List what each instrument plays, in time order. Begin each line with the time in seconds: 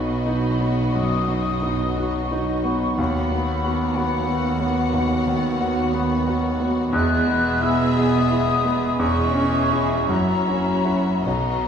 Already playing: grand piano B1 B3 D#4 F#4, double bass section B1, cello section B2, bassoon F#3, viola section B3, clarinet D#4, violin section F#4 D#5, flute section B5
0.26 bassoon F#3, grand piano D#4, clarinet D#4
0.59 bassoon F#3, grand piano B3, clarinet D#4
0.94 grand piano F#2, bassoon F#3, clarinet D#4, flute section D#6
1.28 bassoon F#3, grand piano B3, clarinet D#4
1.62 bassoon F#3, grand piano D#4, clarinet D#4
1.97 bassoon F#3, clarinet D#4, grand piano F#4, flute section C#6
2.32 bassoon F#3, grand piano D#4, clarinet D#4
2.65 bassoon F#3, grand piano B3, clarinet D#4
2.98 grand piano D#2, cello section D#2, double bass section D#2, bassoon F#3, clarinet B3, viola section B3, violin section F#4 F#5, flute section B5
3.31 bassoon F#3, grand piano B3, clarinet B3
3.64 bassoon F#3, clarinet B3, grand piano F#4
3.96 bassoon F#3, clarinet B3, grand piano B3, flute section F#5
4.28 bassoon F#3, clarinet B3, grand piano F#4
4.60 bassoon F#3, grand piano B3, clarinet B3
4.93 grand piano D#2, bassoon F#3, clarinet B3
5.27 grand piano D#3, bassoon F#3, clarinet B3
5.61 bassoon F#3, clarinet B3, grand piano F#4
5.94 bassoon F#3, grand piano B3, clarinet B3
6.27 bassoon F#3, clarinet B3, grand piano F#4
6.60 bassoon F#3, grand piano B3, clarinet B3
6.92 double bass section E1, grand piano E2, cello section E2, bassoon G#3, viola section B3, clarinet B3, violin section G#4 E5, flute section F#6
7.27 bassoon G#3, grand piano B3, clarinet B3
7.61 bassoon G#3, clarinet B3, grand piano E4, flute section E6
7.96 bassoon G#3, clarinet B3, grand piano G#4, flute section D#6
8.31 bassoon G#3, clarinet B3, grand piano E4
8.65 bassoon G#3, grand piano B3, clarinet B3
8.99 double bass section E1, grand piano E2, cello section E2, bassoon G#3, viola section C#4, clarinet C#4, violin section G#4 E5, flute section C#6
9.35 bassoon G#3, grand piano C#4, clarinet C#4
9.72 bassoon G#3, clarinet C#4, grand piano E4 G#4
10.07 double bass section F#1, cello section F#2, grand piano F#2, bassoon F#3, viola section C#4, clarinet E4, violin section F#4 E5, flute section A#5
10.47 bassoon F#3, grand piano C#4, clarinet E4
10.84 bassoon F#3, clarinet E4, grand piano E4 F#4
11.23 double bass section B1, grand piano B1, cello section B2, bassoon F#3, viola section B3, clarinet D#4, violin section F#4 D#5, flute section A#5